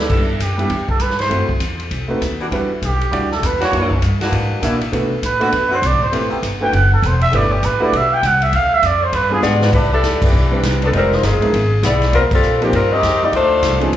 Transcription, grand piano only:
0.09 0.26 G3 soft
0.09 0.27 B3 soft
0.09 0.27 D4 soft
0.09 0.27 E4 soft
0.09 0.27 A4 soft
0.58 0.69 G3 medium
0.58 0.69 B3 medium
0.58 0.69 D4 medium
0.58 0.69 E4 medium
0.58 0.70 G4 medium
1.29 1.47 A3 medium
1.29 1.47 C4 soft
1.29 1.47 E4 soft
1.29 1.48 F#4 soft
1.29 1.48 C5 medium
2.08 2.19 A3 medium
2.08 2.20 C4 soft
2.08 2.20 D#4 soft
2.08 2.20 F#4 medium
2.08 2.20 B4 medium
2.51 2.68 G3 medium
2.51 2.68 D4 soft
2.51 2.68 E4 soft
2.51 2.69 F#4 soft
2.51 2.69 B4 medium
3.11 3.28 G3 medium
3.11 3.28 D4 medium
3.11 3.29 E4 medium
3.11 3.29 F#4 soft
3.11 3.29 D5 medium
3.72 3.89 A#3 soft
3.72 3.89 D4 soft
3.72 3.89 E4 soft
3.72 3.89 F#4 soft
3.72 3.90 C#5 medium
4.62 4.79 A#3 medium
4.62 4.79 D4 soft
4.62 4.79 E4 medium
4.62 4.79 F#4 medium
4.62 4.80 E5 medium
4.92 5.09 A3 medium
4.92 5.09 B3 soft
4.92 5.09 D4 soft
4.92 5.10 F#4 soft
4.92 5.10 B4 medium
5.40 5.51 A3 medium
5.40 5.51 B3 medium
5.40 5.51 D4 medium
5.40 5.51 F#4 medium
5.40 5.52 B4 medium
6.12 6.29 A3 soft
6.12 6.29 C4 soft
6.12 6.29 E4 soft
6.12 6.30 G4 soft
6.12 6.30 B4 soft
6.61 6.71 A3 medium
6.61 6.72 D4 soft
6.61 6.72 E4 soft
6.61 6.72 F#4 medium
6.61 6.72 B4 medium
7.32 7.49 A3 medium
7.32 7.49 D4 medium
7.32 7.50 E4 soft
7.32 7.50 G4 soft
7.32 7.50 B4 medium
7.80 7.91 A3 medium
7.80 7.91 D4 medium
7.80 7.91 E4 medium
7.80 7.92 G4 medium
7.80 7.92 B4 medium
9.30 9.70 G3 medium
9.30 9.70 B3 medium
9.30 9.70 D4 medium
9.30 9.70 F4 medium
9.30 9.71 G#4 medium
10.51 10.90 G3 medium
10.51 10.90 C4 soft
10.51 10.91 D4 medium
10.51 10.91 E4 soft
10.51 10.91 B4 medium
10.92 11.09 G#3 medium
10.92 11.09 C4 soft
10.92 11.09 D#4 soft
10.92 11.10 F4 soft
10.92 11.10 C5 medium
11.41 11.51 G#3 medium
11.41 11.51 B3 medium
11.41 11.51 D4 soft
11.41 11.52 E4 soft
11.41 11.52 A#4 medium
12.61 12.71 F3 medium
12.61 12.71 A#3 medium
12.61 12.72 C4 medium
12.61 12.72 D#4 medium
12.61 12.72 G4 medium
13.80 13.91 F3 medium
13.80 13.91 B3 medium
13.80 13.91 C#4 medium
13.80 13.92 D#4 medium
13.80 13.92 G#4 medium

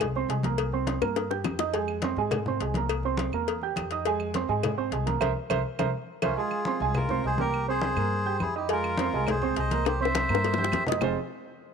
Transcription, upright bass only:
0.00 0.26 C2 loud
0.29 0.96 C2 loud
1.02 1.42 G2 medium
1.45 2.12 F2 medium
2.17 2.57 G#2 loud
2.60 3.27 C2 loud
3.32 3.73 E2 medium
3.76 4.43 F2 loud
4.48 4.89 G#2 medium
4.91 5.19 C2 loud
5.21 5.32 C2 loud
5.50 5.61 C2 loud
5.79 5.90 C2 loud
6.22 6.34 C2 medium
6.80 7.21 C2 loud
7.24 7.91 C2 medium
7.96 8.37 G2 loud
8.40 9.07 F2 loud
9.13 9.53 C2 loud
9.56 10.23 C2 medium
10.29 10.70 G2 loud
10.72 10.98 F2 loud
11.01 11.14 F1 loud

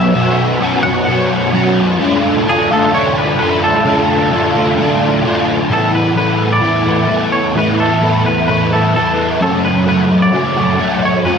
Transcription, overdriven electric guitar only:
0.00 0.13 F#3 medium
0.00 0.14 B3 medium
0.00 0.15 C#4 medium
0.00 0.15 F#4 medium
0.14 0.84 B2 medium
0.14 0.59 F#3 loud
0.14 0.60 B3 loud
0.14 0.61 C#4 loud
0.14 0.61 F#4 loud
0.61 1.06 F#3 medium
0.61 0.86 B3 medium
0.61 0.85 C#4 medium
0.61 0.84 F#4 medium
0.85 1.07 B3 medium
0.85 1.08 C#4 medium
0.85 1.09 F#4 medium
1.07 1.77 B2 medium
1.07 1.52 F#3 loud
1.07 1.52 B3 medium
1.07 1.54 C#4 medium
1.07 1.55 F#4 loud
1.53 1.98 F#3 medium
1.53 1.99 B3 medium
1.53 1.99 C#4 medium
1.53 2.00 F#4 medium
2.00 2.46 D3 loud
2.00 2.47 A3 loud
2.00 2.48 D4 loud
2.00 2.49 F4 loud
2.47 2.92 D3 medium
2.47 2.72 A3 medium
2.47 2.71 D4 medium
2.47 2.69 F4 medium
2.70 2.93 A3 medium
2.70 2.93 D4 medium
2.70 2.94 F4 medium
2.92 3.37 D3 medium
2.92 3.39 A3 medium
2.92 3.40 D4 medium
2.92 3.40 F4 medium
3.38 3.84 D3 medium
3.38 3.84 A3 medium
3.38 3.85 D4 medium
3.38 3.86 F4 medium
3.85 4.30 D3 medium
3.85 4.31 A3 loud
3.85 4.32 D4 medium
3.85 4.33 F4 loud
4.31 4.76 D3 medium
4.31 4.56 A3 medium
4.31 4.54 D4 medium
4.31 4.53 F4 medium
4.54 4.78 A3 medium
4.54 4.78 D4 medium
4.54 4.79 F4 medium
4.78 5.22 D3 medium
4.78 5.23 A3 medium
4.78 5.25 D4 medium
4.78 5.25 F4 medium
5.23 5.68 D3 medium
5.23 5.69 A3 medium
5.23 5.69 D4 medium
5.23 5.70 F4 medium
5.69 6.61 A2 medium
5.69 6.14 E3 medium
5.69 6.15 A3 medium
5.69 6.17 B3 loud
5.69 6.17 E4 medium
6.15 6.61 E3 medium
6.15 6.62 A3 medium
6.15 6.62 B3 medium
6.15 6.62 E4 medium
6.61 7.08 A2 medium
6.61 7.07 E3 medium
6.61 6.88 A3 medium
6.61 6.86 B3 medium
6.61 6.84 E4 medium
6.86 7.09 A3 medium
6.86 7.09 B3 medium
6.86 7.10 E4 medium
7.08 7.54 E3 medium
7.08 7.56 A3 medium
7.08 7.55 B3 medium
7.08 7.56 E4 medium
7.55 8.24 A2 medium
7.55 8.00 E3 medium
7.55 8.02 A3 loud
7.55 8.02 B3 loud
7.55 8.02 E4 loud
8.01 8.48 E3 medium
8.01 8.49 A3 medium
8.01 8.48 B3 medium
8.01 8.49 E4 medium
8.48 8.94 A2 medium
8.48 8.94 E3 medium
8.48 8.74 A3 loud
8.48 8.72 B3 medium
8.48 8.70 E4 medium
8.72 8.96 A3 medium
8.72 8.96 B3 medium
8.72 8.97 E4 medium
8.95 9.39 E3 medium
8.95 9.41 A3 medium
8.95 9.40 B3 medium
8.95 9.40 E4 medium
9.40 10.32 F#2 medium
9.40 10.09 C#3 medium
9.40 9.85 F#3 medium
9.40 9.86 A3 medium
9.40 9.88 C#4 loud
9.40 9.88 F#4 medium
9.85 10.33 F#3 medium
9.85 10.33 A3 medium
9.85 10.34 C#4 medium
9.85 10.34 F#4 medium
10.32 10.78 F#2 medium
10.32 10.79 C#3 medium
10.32 10.59 F#3 medium
10.32 10.57 A3 medium
10.32 10.57 C#4 medium
10.32 10.56 F#4 medium
10.56 10.78 F#3 medium
10.56 10.78 A3 medium
10.56 10.79 C#4 medium
10.56 10.81 F#4 medium
10.78 11.25 F#3 medium
10.78 11.24 A3 medium
10.78 11.26 C#4 medium
10.78 11.26 F#4 medium
11.24 11.38 F#2 medium
11.24 11.38 C#3 medium
11.24 11.38 F#3 medium
11.24 11.38 A3 medium
11.24 11.38 C#4 loud
11.24 11.38 F#4 loud

